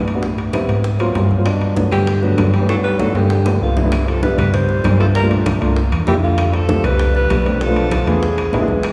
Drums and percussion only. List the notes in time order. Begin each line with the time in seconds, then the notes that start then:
0.08 high conga, high timbale
0.23 high bongo, high conga
0.38 high bongo, high conga, high timbale
0.53 high bongo, high conga, high timbale, low timbale, claves
0.69 high bongo, high timbale
0.84 high bongo, high conga
0.99 high bongo, high conga, high timbale, claves
1.15 high bongo, low bongo, high conga, high timbale, low timbale
1.31 high conga
1.46 high bongo, high conga, high timbale, claves
1.61 high bongo, high conga, high timbale
1.76 high bongo, high conga, low timbale
1.92 high bongo, high timbale, claves
2.07 high bongo, high conga, high timbale
2.23 high bongo, high conga
2.38 high bongo, low bongo, high conga, high timbale, low timbale, claves
2.54 high conga, high timbale
2.69 high bongo, high conga, high timbale
2.84 high bongo, high conga, high timbale
2.99 high bongo, high conga, high timbale, claves
3.15 high bongo, low timbale
3.30 high bongo, high conga, low timbale
3.46 high bongo, high conga, low timbale, claves
3.61 high conga
3.77 low bongo, high conga, low timbale
3.92 high bongo, high conga, high timbale, claves
4.08 high bongo, high conga, high timbale
4.23 high bongo, high conga, low timbale
4.38 high bongo, low conga, high timbale, claves
4.54 high bongo, high conga, low conga, high timbale
4.69 high bongo, high conga
4.84 high bongo, low bongo, high conga, high timbale, low timbale, claves
5.00 high conga, high timbale
5.15 high bongo, high conga
5.31 high bongo, high conga, high timbale
5.46 high bongo, high conga, high timbale, low timbale, claves
5.61 high bongo, high timbale
5.76 high bongo, high conga
5.92 high bongo, high conga, high timbale, claves
6.07 high bongo, low bongo, high conga, high timbale, low timbale
6.38 high bongo, high conga, high timbale, claves
6.53 high bongo, high conga, high timbale
6.69 high bongo, high conga, low timbale
6.84 high bongo, low conga, high timbale, claves
6.99 high bongo, high conga, high timbale
7.15 high bongo, high conga
7.30 high bongo, low bongo, high conga, high timbale, low timbale, claves
7.46 high conga, high timbale
7.61 high bongo, high conga
7.76 high bongo, high conga, high timbale
7.91 high bongo, high conga, high timbale, low timbale, claves
8.07 high bongo, high timbale
8.22 high bongo, high conga
8.38 high bongo, high conga, high timbale, claves
8.53 high bongo, low bongo, high conga, high timbale, low timbale
8.68 high conga
8.83 high bongo, high conga, high timbale, claves